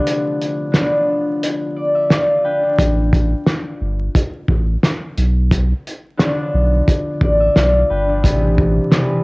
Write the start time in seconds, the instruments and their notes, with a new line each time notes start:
Already playing: harp D3 F3 A3 B3 D4 G4 A4
0.07 closed hi-hat
0.41 closed hi-hat
0.72 harp D3 F3 B3, cross-stick, snare, closed hi-hat
0.76 harp C#4
0.83 harp D4
1.43 closed hi-hat
1.76 harp D5
1.95 harp E5
2.10 harp F4 D5 F5, cross-stick, snare, closed hi-hat
2.44 harp D4 B4 G5
2.63 harp F3 D4
2.78 sub bass A1, kick, closed hi-hat
3.13 kick, closed hi-hat
3.47 cross-stick, snare, closed hi-hat
3.81 sub bass G1
4.15 kick, closed hi-hat
4.48 sub bass A1, kick
4.83 cross-stick, snare, closed hi-hat
5.17 sub bass B1, closed hi-hat
5.51 kick, closed hi-hat
5.87 closed hi-hat
6.17 harp D3 F3 B3, cross-stick, snare, closed hi-hat
6.22 harp C#4
6.28 harp D4
6.54 sub bass B1
6.88 kick, closed hi-hat
7.21 sub bass A1, harp D5, kick
7.40 harp E5
7.56 sub bass B1, harp F4 D5 F5, cross-stick, snare, closed hi-hat
7.90 sub bass G1, harp D4 B4 G5
8.08 harp F3 D4
8.23 sub bass A1, harp B2 E3 G3, kick, closed hi-hat
8.27 harp C3 B3
8.58 kick
8.91 harp C3 E3 G3, cross-stick, snare, closed hi-hat
8.95 harp B3